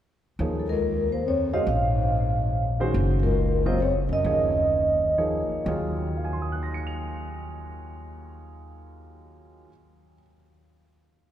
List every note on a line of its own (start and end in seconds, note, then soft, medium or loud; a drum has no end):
0.39 1.63 D#2 medium
0.39 0.65 F3 medium
0.39 0.65 A#3 soft
0.39 0.65 D#4 soft
0.39 0.65 G#4 soft
0.39 0.65 C#5 medium
0.58 0.67 C2 soft
0.58 0.68 A4 soft
0.68 1.07 C#2 medium
0.68 1.12 A#4 medium
1.11 1.24 D#2 medium
1.11 1.24 C5 medium
1.25 1.51 F2 medium
1.25 1.55 C#5 medium
1.53 1.60 F#2 medium
1.53 1.66 G#3 medium
1.53 1.66 C#4 medium
1.53 1.66 F#4 soft
1.53 1.66 C5 medium
1.53 1.60 D#5 medium
1.53 1.66 F5 medium
1.67 2.90 A#1 medium
1.67 2.76 G#2 medium
1.67 2.77 F5 medium
2.80 3.34 D#3 medium
2.80 3.34 G#3 medium
2.80 3.34 C#4 medium
2.80 3.34 F#4 medium
2.80 3.35 C5 medium
2.94 4.05 F#1 medium
3.23 3.63 C#2 medium
3.23 3.63 A#4 medium
3.66 3.80 D#2 medium
3.66 3.79 F#3 medium
3.66 3.79 C4 medium
3.66 3.79 F4 medium
3.66 3.79 A#4 medium
3.66 3.80 C5 medium
3.66 3.79 D#5 medium
3.81 3.94 F2 medium
3.81 3.95 C#5 medium
4.09 4.23 E2 medium
4.09 5.14 F#2 medium
4.09 5.15 D#5 medium
4.24 5.45 D#2 medium
4.24 4.52 F3 soft
4.24 4.52 A#3 soft
4.24 4.52 D#4 soft
4.24 4.52 G#4 soft
4.24 4.52 C#5 medium
5.18 5.67 F3 soft
5.18 5.67 A#3 soft
5.18 5.67 D#4 soft
5.18 5.66 G#4 soft
5.18 5.67 C#5 medium
5.49 muted upright bass stroke soft
5.65 9.66 D#2 medium
5.65 9.63 D#2 medium
5.65 9.67 D#3 soft
5.65 9.67 F#3 soft
5.65 9.68 F4 medium
5.65 9.69 G#4 medium
5.65 9.69 C#5 medium
6.17 10.14 F5 soft
6.25 10.17 G#5 soft
6.33 10.22 C6 soft
6.42 10.26 D#6 soft
6.52 10.31 F#6 soft
6.63 10.37 A#6 soft
6.74 10.42 C#7 soft
6.87 10.48 F7 soft